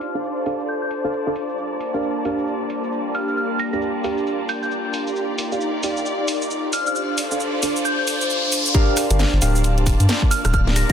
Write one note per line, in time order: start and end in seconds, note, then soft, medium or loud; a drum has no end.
0.00 5.16 D4 medium
0.00 1.54 F4 medium
0.00 0.39 G4 medium
0.00 1.56 C5 medium
0.00 2.85 C5 medium
0.00 0.39 D5 medium
0.00 5.12 D5 medium
0.00 5.16 F5 medium
0.00 5.12 A5 medium
0.00 open hi-hat medium
0.00 cabasa medium
0.05 1.58 A4 medium
0.15 0.32 D4 medium
0.15 0.32 A4 medium
0.15 0.32 C5 medium
0.15 0.32 F5 medium
0.15 cabasa soft
0.24 cabasa soft
0.46 1.02 D4 medium
0.46 1.02 A4 medium
0.46 1.02 C5 medium
0.46 1.02 F5 medium
0.46 open hi-hat medium
0.46 cabasa medium
0.60 cabasa soft
0.68 0.77 G6 medium
0.68 cabasa soft
0.82 0.88 G6 medium
0.91 open hi-hat loud
0.91 cabasa medium
1.04 1.13 D4 medium
1.04 1.13 A4 medium
1.04 1.13 C5 medium
1.04 1.13 F5 medium
1.04 cabasa soft
1.13 cabasa soft
1.27 1.35 D4 medium
1.27 1.35 A4 medium
1.27 1.36 C5 medium
1.27 1.35 F5 loud
1.36 open hi-hat medium
1.36 cabasa medium
1.49 cabasa soft
1.58 5.13 G3 medium
1.58 8.70 F4 medium
1.58 6.69 A#4 medium
1.58 cabasa soft
1.72 5.80 A#3 medium
1.81 open hi-hat medium
1.81 cabasa medium
1.94 2.11 D4 medium
1.94 2.11 G4 medium
1.94 2.11 A#4 medium
1.94 2.11 F5 medium
1.94 cabasa soft
1.99 7.56 G4 medium
1.99 cabasa soft
2.25 3.70 D4 medium
2.25 3.70 G4 medium
2.25 3.70 A#4 medium
2.25 3.70 F5 medium
2.25 open hi-hat medium
2.25 cabasa medium
2.39 cabasa soft
2.48 cabasa soft
2.70 open hi-hat loud
2.70 cabasa medium
2.84 cabasa soft
2.92 cabasa soft
3.15 3.23 F6 medium
3.15 open hi-hat medium
3.15 cabasa medium
3.28 3.34 F6 medium
3.28 cabasa soft
3.37 3.56 F6 medium
3.37 cabasa soft
3.59 3.68 A#6 medium
3.59 open hi-hat loud
3.59 cabasa medium
3.73 3.90 D4 medium
3.73 3.90 G4 medium
3.73 3.90 A#4 medium
3.73 3.90 F5 medium
3.73 3.79 A#6 medium
3.73 cabasa soft
3.82 cabasa soft
4.04 5.15 D4 medium
4.04 5.15 G4 medium
4.04 5.15 A#4 medium
4.04 5.15 F5 medium
4.04 open hi-hat medium
4.04 cabasa medium
4.18 cabasa soft
4.27 cabasa soft
4.49 4.58 G6 medium
4.49 open hi-hat loud
4.49 cabasa medium
4.63 4.68 G6 medium
4.63 cabasa soft
4.71 cabasa soft
4.94 open hi-hat medium
4.94 cabasa medium
5.07 cabasa soft
5.16 6.73 D#4 medium
5.16 6.71 G4 medium
5.16 6.71 D5 medium
5.16 riser medium
5.16 cabasa soft
5.38 open hi-hat loud
5.38 cabasa medium
5.52 5.69 D#4 medium
5.52 5.69 G4 medium
5.52 5.69 D5 medium
5.52 5.69 F5 medium
5.52 cabasa soft
5.61 cabasa soft
5.76 7.55 D5 medium
5.76 10.92 F5 medium
5.83 6.72 D#4 medium
5.83 6.72 G4 medium
5.83 6.72 D5 medium
5.83 6.72 F5 medium
5.83 open hi-hat medium
5.83 cabasa medium
5.97 cabasa soft
6.06 cabasa soft
6.28 open hi-hat loud
6.28 cabasa medium
6.42 cabasa soft
6.51 cabasa soft
6.73 10.92 D4 medium
6.73 8.73 A4 medium
6.73 8.73 C5 medium
6.73 8.72 D5 medium
6.73 6.82 F6 medium
6.73 open hi-hat medium
6.73 cabasa medium
6.87 6.92 F6 medium
6.87 cabasa soft
6.95 7.14 F6 medium
6.95 cabasa soft
7.05 8.74 A4 medium
7.18 open hi-hat loud
7.18 cabasa medium
7.31 7.48 D4 medium
7.31 7.48 A4 medium
7.31 7.48 C5 medium
7.31 7.48 F5 medium
7.31 cabasa soft
7.40 cabasa soft
7.47 9.89 C5 medium
7.63 8.73 D4 medium
7.63 8.73 A4 medium
7.63 8.73 C5 medium
7.63 8.73 F5 medium
7.63 open hi-hat medium
7.63 cabasa medium
7.76 cabasa soft
7.85 7.94 G6 medium
7.85 cabasa soft
7.99 8.04 G6 medium
8.08 open hi-hat loud
8.08 cabasa medium
8.21 cabasa soft
8.30 cabasa soft
8.52 open hi-hat medium
8.52 cabasa medium
8.66 cabasa soft
8.74 9.05 D4 loud
8.74 10.92 F4 medium
8.74 9.05 G4 medium
8.74 9.05 A#4 loud
8.74 10.92 A#4 medium
8.74 10.92 D5 medium
8.74 9.05 F5 loud
8.74 10.92 A5 medium
8.74 kick loud
8.74 closed hi-hat medium
8.74 cabasa soft
8.97 cross-stick medium
8.97 open hi-hat loud
8.97 cabasa medium
9.10 9.25 G1 loud
9.10 9.27 D4 medium
9.10 9.27 G4 medium
9.10 9.27 A#4 medium
9.10 9.27 F5 medium
9.10 closed hi-hat medium
9.10 cabasa soft
9.19 10.92 G4 medium
9.19 snare loud
9.19 cabasa soft
9.33 9.39 G1 medium
9.42 9.94 D1 loud
9.42 10.86 D4 medium
9.42 10.86 G4 medium
9.42 10.86 A#4 medium
9.42 10.86 F5 medium
9.42 open hi-hat medium
9.42 cabasa medium
9.55 cabasa soft
9.63 10.92 A#3 medium
9.63 closed hi-hat medium
9.63 cabasa soft
9.78 closed hi-hat soft
9.86 kick loud
9.86 open hi-hat loud
9.86 cabasa medium
10.00 10.06 G2 medium
10.00 closed hi-hat medium
10.00 cabasa soft
10.09 snare loud
10.09 closed hi-hat medium
10.09 cabasa soft
10.22 kick medium
10.31 10.40 F6 medium
10.31 open hi-hat medium
10.31 cabasa medium
10.45 10.83 D1 medium
10.45 10.50 F6 medium
10.45 cross-stick medium
10.45 closed hi-hat soft
10.45 cabasa soft
10.54 10.72 F6 medium
10.54 kick loud
10.54 closed hi-hat medium
10.54 cabasa soft
10.67 snare medium
10.76 10.85 A#6 medium
10.76 cross-stick medium
10.76 open hi-hat loud
10.76 cabasa medium